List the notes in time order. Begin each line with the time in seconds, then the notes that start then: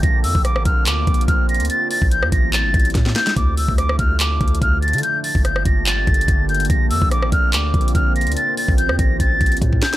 Already playing: A#3
0.03 A#1 D3 C4 F4 A#6, kick, closed hi-hat
0.24 F2 E6, open hi-hat
0.35 A#1, kick
0.45 D6, cross-stick, closed hi-hat
0.56 A1, cross-stick
0.65 A#1 F6, kick, closed hi-hat
0.86 D2 D6, clap, closed hi-hat
1.07 A#1, kick, closed hi-hat
1.14 closed hi-hat
1.21 closed hi-hat
1.28 A#1 F6, kick, closed hi-hat
1.49 A#6, closed hi-hat
1.55 closed hi-hat
1.60 D2, closed hi-hat
1.65 closed hi-hat
1.70 C3 G3 A3 E4 A6, closed hi-hat
1.91 A6, open hi-hat
2.02 A1, kick
2.11 G6, closed hi-hat
2.22 E2, cross-stick
2.32 A1 A#6, kick, closed hi-hat
2.53 A6, clap, closed hi-hat
2.64 G1
2.74 A1, kick, closed hi-hat
2.80 closed hi-hat
2.85 closed hi-hat
2.90 closed hi-hat
2.95 A2, kick, snare, closed hi-hat
3.06 snare
3.16 G6, snare, closed hi-hat
3.27 snare, closed hi-hat
3.37 D2 D3 F3 F4 D6, kick, closed hi-hat
3.57 E6, open hi-hat
3.68 D2, kick
3.78 D6, cross-stick, closed hi-hat
3.89 cross-stick
3.99 D2 F6, kick, closed hi-hat
4.20 D6, clap, closed hi-hat
4.41 D2, kick, closed hi-hat
4.48 closed hi-hat
4.55 closed hi-hat
4.62 D2 F6, kick, closed hi-hat
4.82 A6, closed hi-hat
4.88 closed hi-hat
4.93 D3, closed hi-hat
4.98 closed hi-hat
5.03 D3 A#3 G4 G6, closed hi-hat
5.24 A6, open hi-hat
5.35 G1, kick
5.45 G6, cross-stick, closed hi-hat
5.56 cross-stick
5.65 G1 A#6, kick, closed hi-hat
5.86 A6, clap, closed hi-hat
6.07 G1, kick, closed hi-hat
6.14 closed hi-hat
6.21 closed hi-hat
6.28 G1, kick, closed hi-hat
6.49 G6, closed hi-hat
6.54 closed hi-hat
6.60 closed hi-hat
6.65 closed hi-hat
6.70 A#1 C4 F4 A#6, kick, closed hi-hat
6.90 F2 E6, open hi-hat
7.02 A#1, kick
7.11 D6, cross-stick, closed hi-hat
7.22 A1, cross-stick
7.32 A#1 F6, kick, closed hi-hat
7.53 D2 D6, clap, closed hi-hat
7.74 A#1, kick, closed hi-hat
7.81 closed hi-hat
7.88 closed hi-hat
7.95 A#1 F6, kick, closed hi-hat
8.16 A#6, closed hi-hat
8.21 closed hi-hat
8.27 D2, closed hi-hat
8.32 closed hi-hat
8.36 E3 A3 G4 A6, closed hi-hat
8.57 A6, open hi-hat
8.68 A1, kick
8.78 G6, closed hi-hat
8.89 E2, cross-stick
8.99 A1 A#6, kick, closed hi-hat
9.20 A1 A6, kick, closed hi-hat
9.41 A1, kick, closed hi-hat
9.46 closed hi-hat
9.52 closed hi-hat
9.57 closed hi-hat
9.62 A2, kick, closed hi-hat
9.73 kick
9.82 G6, snare, closed hi-hat
9.93 snare, closed hi-hat